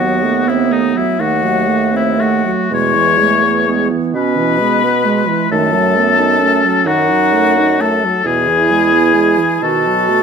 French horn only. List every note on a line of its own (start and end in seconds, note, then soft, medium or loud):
0.00 0.25 F#3 medium
0.23 0.50 A3 medium
0.48 0.74 C4 medium
0.72 0.97 A3 medium
0.95 1.21 F#3 medium
1.20 1.46 D#3 medium
1.44 1.69 F#3 medium
1.68 1.94 A3 medium
1.93 2.20 C4 medium
2.19 2.46 A3 medium
2.45 2.71 F#3 medium
2.71 2.96 B2 medium
2.95 3.21 E3 medium
3.19 3.45 G#3 medium
3.43 3.69 B3 medium
3.68 3.93 G#3 medium
3.91 4.17 E3 medium
4.15 4.39 B2 medium
4.38 4.62 E3 medium
4.61 4.86 G#3 medium
4.84 5.07 B3 medium
5.06 5.29 G#3 medium
5.28 5.50 E3 medium
5.51 5.75 D#3 medium
5.74 5.98 F#3 medium
5.96 6.20 A3 medium
6.19 6.43 D#4 medium
6.42 6.67 A3 medium
6.65 6.88 F#3 medium
6.87 7.11 D#3 medium
7.10 7.36 F#3 medium
7.34 7.60 A3 medium
7.58 7.82 D#4 medium
7.80 8.06 A3 medium
8.05 8.25 F#3 medium
8.26 8.50 B2 medium
8.49 8.74 E3 medium
8.72 8.95 G#3 medium
8.93 9.17 B3 medium
9.15 9.41 G#3 medium
9.40 9.62 E3 medium
9.63 9.88 D#3 medium
9.87 10.11 F#3 medium
10.09 10.23 A3 medium